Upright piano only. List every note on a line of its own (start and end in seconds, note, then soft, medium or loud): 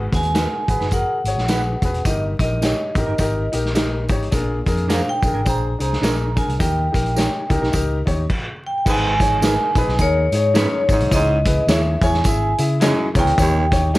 0.00 0.65 G#2 medium
0.12 0.29 F#4 medium
0.12 0.29 G#4 medium
0.12 0.30 B4 medium
0.34 0.60 F#4 medium
0.34 0.60 G#4 medium
0.34 0.61 A#4 medium
0.68 0.85 F#4 medium
0.68 0.86 G#4 medium
0.68 0.87 B4 medium
0.92 1.17 F#4 medium
0.92 1.17 G#4 medium
0.92 1.18 A#4 medium
1.27 1.43 F#4 medium
1.27 1.43 G#4 medium
1.27 1.44 C#5 medium
1.49 1.74 F#4 medium
1.49 1.74 G#4 medium
1.49 1.74 B4 medium
1.83 1.99 F#4 medium
1.83 2.00 G#4 medium
1.83 2.01 B4 medium
2.06 2.93 G2 soft
2.06 2.31 D#4 medium
2.06 2.31 G4 medium
2.06 2.32 A#4 medium
2.40 2.56 D#4 medium
2.40 2.57 G4 medium
2.40 2.58 A#4 medium
2.63 2.87 D#4 medium
2.63 2.88 G4 medium
2.63 2.89 C#5 medium
2.97 3.13 D#4 medium
2.97 3.14 G4 medium
2.97 3.14 A#4 medium
3.20 3.44 D#4 medium
3.20 3.45 G4 medium
3.20 3.45 A#4 loud
3.52 3.69 D#4 medium
3.52 3.70 G4 medium
3.52 3.70 A#4 medium
3.75 4.00 D#4 medium
3.75 4.01 G4 medium
3.75 4.02 A#4 medium
3.75 4.29 D#5 medium
4.09 4.26 D#4 medium
4.09 4.27 G4 medium
4.09 4.28 C#5 medium
4.31 5.19 A#2 medium
4.31 4.57 D4 medium
4.31 4.58 G#4 medium
4.31 4.58 A#4 medium
4.67 4.83 D4 medium
4.67 4.84 G#4 medium
4.67 4.84 A#4 medium
4.90 5.15 D4 medium
4.90 5.15 G#4 medium
4.90 5.16 C5 medium
5.23 5.40 D4 medium
5.23 5.41 G#4 medium
5.23 5.41 A#4 medium
5.45 5.71 D4 medium
5.45 5.71 G#4 medium
5.45 5.71 C5 medium
5.79 5.96 D4 medium
5.79 5.97 G#4 medium
5.79 5.97 C5 medium
6.02 6.28 D4 medium
6.02 6.28 G#4 medium
6.02 6.29 A#4 medium
6.36 6.53 D4 medium
6.36 6.54 G#4 medium
6.36 6.54 A#4 medium
6.59 7.46 D#3 medium
6.59 6.84 D#4 medium
6.59 6.85 G4 medium
6.59 6.85 A#4 medium
6.92 7.09 D#4 medium
6.92 7.10 G4 medium
6.92 7.10 A#4 medium
7.15 7.41 D#4 medium
7.15 7.41 G4 medium
7.15 7.42 C#5 medium
7.49 7.67 D#4 medium
7.49 7.67 G4 medium
7.49 7.67 A#4 medium
7.72 7.98 D#4 medium
7.72 7.98 G4 medium
7.72 7.99 A#4 loud
8.06 8.23 D#4 medium
8.06 8.24 G4 medium
8.06 8.24 C#5 medium
8.85 9.73 G#2 medium
8.85 9.11 D#4 medium
8.85 9.11 G#4 medium
8.85 9.12 B4 medium
9.20 9.37 D#4 medium
9.20 9.37 G#4 medium
9.20 9.38 C#5 medium
9.42 9.67 D#4 medium
9.42 9.68 G#4 medium
9.42 9.68 A#4 medium
9.76 9.93 D#4 medium
9.76 9.94 G#4 medium
9.76 9.94 B4 loud
9.99 10.24 D#4 medium
9.99 10.25 G#4 medium
9.99 10.25 A#4 medium
10.32 10.50 D#4 medium
10.32 10.50 G#4 medium
10.32 10.51 C#5 medium
10.54 10.80 D#4 medium
10.54 10.81 G#4 medium
10.54 10.81 C#5 medium
10.89 11.06 D#4 medium
10.89 11.07 G#4 medium
10.89 11.07 C#5 medium
11.11 11.98 C#3 medium
11.11 11.37 E4 medium
11.11 11.37 G#4 medium
11.11 11.38 C#5 medium
11.45 11.62 E4 medium
11.45 11.63 G#4 medium
11.45 11.63 B4 medium
11.68 11.93 E4 medium
11.68 11.94 G#4 medium
11.68 11.94 C#5 medium
12.02 12.19 E4 medium
12.02 12.19 G#4 medium
12.02 12.20 C#5 medium
12.25 12.50 E4 medium
12.25 12.51 G#4 medium
12.25 12.51 E5 medium
12.58 12.75 E4 medium
12.58 12.76 G#4 medium
12.58 12.76 E5 medium
12.80 13.06 E4 loud
12.80 13.06 G#4 medium
12.80 13.07 D#5 loud
13.14 13.31 E4 medium
13.14 13.32 G#4 medium
13.14 13.33 C#5 medium
13.37 13.98 D#3 medium
13.37 13.63 D#4 medium
13.37 13.63 G4 medium
13.37 13.64 C#5 loud
13.71 13.88 D#4 medium
13.71 13.89 G4 medium
13.71 13.89 C#5 medium
13.94 13.98 D#4 medium
13.94 13.98 G4 medium
13.94 13.98 A#4 loud